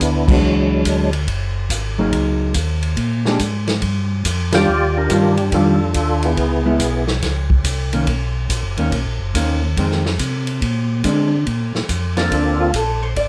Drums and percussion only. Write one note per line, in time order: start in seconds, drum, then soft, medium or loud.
0.00 kick soft
0.00 hi-hat pedal medium
0.00 ride medium
0.28 kick medium
0.28 crash medium
0.85 kick soft
0.85 hi-hat pedal medium
0.85 ride medium
1.13 ride soft
1.28 kick soft
1.28 ride medium
1.70 kick soft
1.70 hi-hat pedal medium
1.70 ride medium
2.12 kick soft
2.12 ride medium
2.54 kick soft
2.54 hi-hat pedal medium
2.54 ride medium
2.83 ride soft
2.97 kick soft
2.97 ride medium
3.25 snare soft
3.39 kick soft
3.39 hi-hat pedal medium
3.39 ride medium
3.67 snare medium
3.67 ride soft
3.82 kick soft
3.82 ride medium
4.25 kick soft
4.25 hi-hat pedal medium
4.25 ride medium
4.52 snare medium
4.52 ride medium
5.10 kick soft
5.10 hi-hat pedal soft
5.10 ride medium
5.37 ride soft
5.52 kick soft
5.52 ride medium
5.94 kick soft
5.94 hi-hat pedal soft
5.94 ride medium
6.23 ride soft
6.37 kick soft
6.37 ride medium
6.80 kick soft
6.80 hi-hat pedal medium
6.80 ride medium
7.07 snare medium
7.22 kick soft
7.22 snare soft
7.22 ride medium
7.50 kick medium
7.64 kick soft
7.64 hi-hat pedal medium
7.64 ride medium
7.93 ride soft
8.07 kick soft
8.07 ride medium
8.50 kick soft
8.50 hi-hat pedal medium
8.50 ride medium
8.77 ride soft
8.92 kick soft
8.92 ride medium
9.35 kick soft
9.35 hi-hat pedal medium
9.35 ride medium
9.77 kick soft
9.77 ride medium
9.91 snare soft
10.06 snare soft
10.19 kick soft
10.19 hi-hat pedal soft
10.19 ride medium
10.47 ride soft
10.62 kick soft
10.62 ride medium
11.04 kick soft
11.04 hi-hat pedal medium
11.04 ride medium
11.47 kick soft
11.47 ride soft
11.75 snare soft
11.89 kick soft
11.89 hi-hat pedal medium
11.89 ride medium
12.17 snare soft
12.17 ride soft
12.31 kick soft
12.31 ride medium
12.74 kick soft
12.74 hi-hat pedal medium
12.74 ride medium
13.16 kick soft
13.16 ride medium